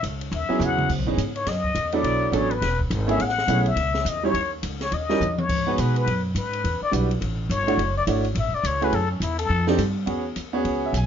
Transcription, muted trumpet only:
0.35 0.66 E5 medium
0.65 0.92 F#5 medium
1.36 1.50 C#5 loud
1.49 1.97 D#5 medium
1.96 2.36 D5 medium
2.34 2.52 C#5 medium
2.51 2.80 B4 loud
3.10 3.23 E5 loud
3.22 3.70 F#5 loud
3.68 4.11 E5 loud
4.09 4.25 D#5 medium
4.26 4.51 C#5 loud
4.83 4.96 C#5 medium
4.94 5.41 D#5 loud
5.39 5.82 C#5 medium
5.80 5.97 B4 medium
5.98 6.24 B4 medium
6.38 6.80 B4 medium
6.83 6.93 D5 loud
7.51 7.94 C#5 medium
7.98 8.04 D5 loud
8.39 8.56 E5 medium
8.55 8.68 D5 loud
8.66 8.86 C#5 medium
8.84 8.97 B4 loud
8.95 9.11 A4 loud
9.11 9.24 C#4 medium
9.23 9.39 E4 medium
9.39 9.66 A4 loud

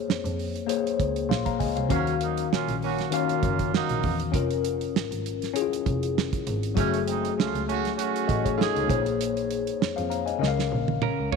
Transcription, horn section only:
1.90 2.15 F#3 loud
1.90 2.14 A#3 medium
1.90 2.15 C#4 loud
2.20 2.45 F#3 medium
2.20 2.45 A#3 medium
2.20 2.45 D#4 medium
2.51 2.75 A#3 medium
2.51 2.76 C#4 medium
2.51 2.76 F4 medium
2.82 3.06 A#3 medium
2.82 3.06 C#4 medium
2.82 3.06 F#4 loud
3.13 3.70 A#3 medium
3.13 3.70 C#4 medium
3.13 3.69 F4 medium
3.73 4.17 F#3 medium
3.73 4.17 A#3 medium
3.73 4.17 D#4 loud
6.76 7.01 C#3 medium
6.76 7.01 A3 loud
6.76 7.01 C#4 loud
7.06 7.31 G#3 medium
7.06 7.31 C4 medium
7.06 7.31 D#4 medium
7.36 7.61 A3 medium
7.36 7.61 C#4 medium
7.36 7.61 F4 medium
7.66 7.91 A3 loud
7.66 7.91 C#4 medium
7.66 7.91 F#4 loud
7.97 8.55 A3 medium
7.97 8.55 C#4 medium
7.97 8.55 F#4 loud
8.57 9.02 C#4 medium
8.57 9.02 F4 medium
8.57 9.02 G#4 loud

